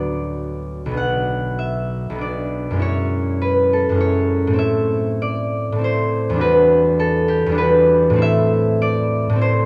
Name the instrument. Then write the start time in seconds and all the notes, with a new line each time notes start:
harp
Already playing: D2 F#3 B3 D4 A4 C#5 D5 F#5
0.86 B1 F#3
0.91 B3 D4
0.97 F#5
1.59 E5
2.10 B1 F#3
2.15 B3 D4
2.21 D5
2.71 F#2 G#3
2.76 C#4 E4
2.82 C#5
3.42 B4
3.73 A4
3.89 F#2 G#3
3.95 C#4 E4
4.01 C#5
4.47 A2 A3
4.53 C4 E4
4.59 E5
5.22 D5
5.72 A2 A3
5.78 C4 E4
5.84 C5
6.30 E2 G3
6.36 D4 F#4
6.41 B4
6.99 A4
7.28 G4
7.46 E2 G3
7.52 D4 F#4
7.58 B4
8.10 A2 A3
8.16 C4 E4
8.22 E5
8.82 D5
9.30 A2 A3
9.36 C4 E4
9.41 C5